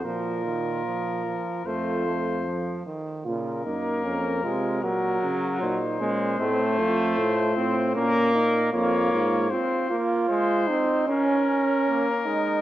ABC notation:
X:1
M:4/4
L:1/8
Q:1/4=76
K:Bbm
V:1 name="Trumpet"
B4 c3 z | B4 B2 c2- | c4 B2 d2 | c z c2 B4 |]
V:2 name="Flugelhorn"
F4 F3 z | F E D F G2 E D | C F3 D E F F | F F2 E D3 E |]
V:3 name="Trombone" clef=bass
F, E, F, F, =A, A, F, E, | D, B,2 A, G,3 A, | =A,3 C B,2 B,2 | C B, A, C D z B, A, |]
V:4 name="Bass trombone" clef=bass
B,,3 z F,,3 z | B,, G,, F,, C, B,, D, B,, B,, | =A,, F,, A,, A,, B,,2 F,, _A,, | z8 |]